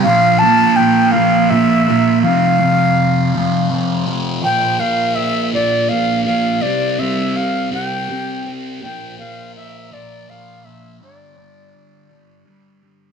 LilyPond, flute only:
\new Staff \with { instrumentName = "Flute" } { \time 6/8 \key bes \lydian \tempo 4. = 55 f''8 a''8 g''8 f''8 e''4 | f''2 r4 | g''8 f''8 e''8 d''8 f''8 f''8 | d''8 e''8 f''8 g''4 r8 |
g''8 f''8 e''8 d''8 f''8 e''8 | d''2 r4 | }